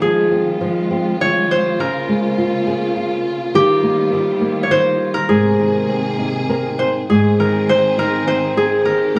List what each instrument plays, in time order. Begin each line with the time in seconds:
Already playing: string section D#3, harp C5
0.01 nylon-string guitar F3, string section G#3 F4, harp G#4
0.31 nylon-string guitar C4
0.61 nylon-string guitar F3
0.91 nylon-string guitar C4
1.21 nylon-string guitar F3, harp C#5
1.51 harp C5
1.78 string section C#3 A#3, nylon-string guitar C#3, harp A#4
2.08 nylon-string guitar G#3
2.38 nylon-string guitar F4
2.67 nylon-string guitar G#4
2.96 nylon-string guitar F4
3.54 string section D#3 G3, nylon-string guitar D#3, harp G4
3.83 nylon-string guitar A#3
4.13 nylon-string guitar D#3
4.41 nylon-string guitar A#3
4.63 harp C#5
4.70 nylon-string guitar D#3, harp C5
5.14 harp A#4
5.29 nylon-string guitar G#2, string section C3 A#3 G#4, harp G#4
5.59 nylon-string guitar D#3
5.89 nylon-string guitar C4
6.19 nylon-string guitar D#4
6.49 nylon-string guitar C4 A#4
6.79 harp C5
7.10 nylon-string guitar G#2, string section D#3 C4 G#4, harp G#4
7.40 nylon-string guitar D#3, harp A#4
7.68 nylon-string guitar C4, harp C5
7.98 nylon-string guitar D#4, harp A#4
8.27 nylon-string guitar C4, harp C5
8.57 nylon-string guitar D#4, harp G#4
8.85 nylon-string guitar D#3, string section G4, harp A#4
9.15 nylon-string guitar A#3